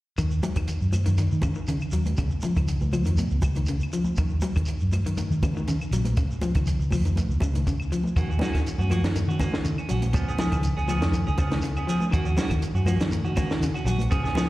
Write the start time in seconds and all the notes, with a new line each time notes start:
0.18 D#2 D#3, kick, closed hi-hat, claves, shekere
0.31 shekere
0.43 F#3, closed hi-hat, high conga, shekere
0.55 D#2 D#3, kick, closed hi-hat, claves, shekere
0.68 closed hi-hat, shekere
0.81 F#2, shekere
0.93 muted clean electric guitar stroke, closed hi-hat, high conga, claves, shekere
1.06 F#2 D#3, closed hi-hat, shekere
1.17 D#3, closed hi-hat, shekere
1.31 D#3, shekere
1.42 C#3, kick, closed hi-hat, high conga, claves, shekere
1.55 D#3, shekere
1.67 C#3 D#3, closed hi-hat, shekere
1.81 claves, shekere
1.91 D#2 F#3, closed hi-hat, shekere
2.05 closed hi-hat, high conga, shekere
2.17 C#2 C#3, kick, closed hi-hat, claves, shekere
2.30 shekere
2.41 F3, muted fingered electric bass stroke, closed hi-hat, high conga, shekere
2.56 C#2 D#3, kick, closed hi-hat, claves, shekere
2.67 closed hi-hat, shekere
2.81 C#2, high conga, shekere
2.93 F3, closed hi-hat, high conga, claves, shekere
3.05 F2 D#3, closed hi-hat, shekere
3.17 B2, closed hi-hat, high conga, shekere
3.30 C#2, shekere
3.42 C#2, kick, closed hi-hat, high conga, claves, shekere
3.55 D#3, closed hi-hat, high conga, shekere
3.66 C#3, closed hi-hat, shekere
3.80 claves, shekere
3.92 F3, closed hi-hat, shekere
4.04 high conga, shekere
4.17 D#2 D#3, kick, closed hi-hat, claves, shekere
4.29 shekere
4.41 F#3, closed hi-hat, high conga, shekere
4.55 D#2 D#3, kick, closed hi-hat, claves, shekere
4.66 closed hi-hat, shekere
4.80 F#2, shekere
4.92 muted clean electric guitar stroke, closed hi-hat, high conga, claves, shekere
5.05 F#2 D#3, closed hi-hat, shekere
5.17 D#3, closed hi-hat, high conga, shekere
5.30 D#3, shekere
5.43 C#3, kick, closed hi-hat, high conga, claves, shekere
5.55 D#3, high conga, shekere
5.68 C#3 D#3, closed hi-hat, shekere
5.81 claves, shekere
5.91 A#1 F#3, closed hi-hat, shekere
6.05 closed hi-hat, high conga, shekere
6.17 C#2 C#3, kick, closed hi-hat, claves, shekere
6.31 shekere
6.42 F3, muted fingered electric bass stroke, closed hi-hat, high conga, shekere
6.55 C#2 D#3, kick, closed hi-hat, claves, shekere
6.66 closed hi-hat, shekere
6.79 C#2, shekere
6.91 F3, kick, open hi-hat, high conga, claves, shekere
7.04 F2 D#3, closed hi-hat, shekere
7.16 muted clean electric guitar stroke, closed hi-hat, high conga, shekere
7.29 C#2, shekere
7.40 C#2 C#3, kick, closed hi-hat, high conga, claves, shekere
7.54 D#3, closed hi-hat, high conga, shekere
7.67 C#3, kick, closed hi-hat, shekere
7.80 claves, shekere
7.92 F3, closed hi-hat, shekere
8.04 high conga, shekere
8.16 D#2 D#3 A#3 C#4 F#4, kick, closed hi-hat, claves, shekere
8.30 C#4 F#4, shekere
8.39 F#3 A#3 C#4 F#4, snare, closed hi-hat, high conga
8.44 shekere
8.54 D#2 D#3, kick, snare, closed hi-hat, claves, shekere
8.67 closed hi-hat, shekere
8.78 F#2 C#4 F#4, high conga, shekere
8.90 F3 A#3 C#4 F#4, closed hi-hat, high conga, claves, shekere
9.03 F#2 D#3, snare, closed hi-hat, shekere
9.15 D#3, closed hi-hat, shekere
9.28 D#3 C#4 F#4, shekere
9.39 C#3 A#3 C#4 F#4, kick, snare, closed hi-hat, high conga, claves, shekere
9.52 D#3, snare, high conga, shekere
9.64 C#3 D#3, closed hi-hat, shekere
9.78 C#4, claves, shekere
9.89 A#1 F#3 C#4 F#4, muted clean electric guitar stroke, closed hi-hat, shekere
10.02 closed hi-hat, high conga, shekere
10.13 C#2 C#3 F3 B3 C#4, muted clean electric guitar stroke, kick, closed hi-hat, claves, shekere
10.28 B3 C#4 G#4, shekere
10.38 F3 B3 G#4, muted fingered electric bass stroke, snare, closed hi-hat, high conga, shekere
10.52 C#2 D#3, kick, closed hi-hat, claves, shekere
10.63 closed hi-hat, shekere
10.77 C#2 B3 C#4 G#4, shekere
10.88 F3 B3 C#4 G#4, closed hi-hat, high conga, claves, shekere
11.01 F2 D#3, snare, closed hi-hat, shekere
11.12 D#3, closed hi-hat, shekere
11.27 C#2 C#4 G#4, muted clean electric guitar stroke, shekere
11.38 C#2 C#3 F3 B3 C#4 G#4, kick, closed hi-hat, high conga, claves, shekere
11.51 D#3, snare, closed hi-hat, high conga, shekere
11.61 C#3, closed hi-hat, shekere
11.76 B3 C#4 G#4, claves, shekere
11.87 F3 B3 C#4 G#4, closed hi-hat, shekere
12.00 high conga, shekere
12.11 D#2 D#3 A#3 C#4 F#4, kick, closed hi-hat, claves, shekere
12.25 C#4 F#4, shekere
12.37 F#3 A#3 C#4 F#4, snare, closed hi-hat, high conga, shekere
12.50 D#2 D#3, kick, closed hi-hat, claves, shekere
12.62 closed hi-hat, shekere
12.74 F#2 C#4 F#4, shekere
12.86 F3 A#3 C#4 F#4, closed hi-hat, high conga, claves, shekere
12.99 F#2 D#3, snare, closed hi-hat, shekere
13.12 D#3, closed hi-hat, high conga, shekere
13.24 D#3 C#4 F#4, shekere
13.36 C#3 A#3 C#4 F#4, kick, closed hi-hat, high conga, claves, shekere
13.50 D#3, snare, shekere
13.60 C#3 D#3, closed hi-hat, shekere
13.74 C#4 F#4, claves, shekere
13.84 A#1 F#3 C#4 F#4, muted clean electric guitar stroke, closed hi-hat, shekere
13.99 closed hi-hat, high conga, shekere
14.10 C#2 C#3 F3 B3 C#4 G#4, kick, closed hi-hat, claves, shekere
14.23 B3 C#4 G#4, snare, shekere
14.35 F3 B3 C#4 G#4, muted fingered electric bass stroke, snare, closed hi-hat, high conga, shekere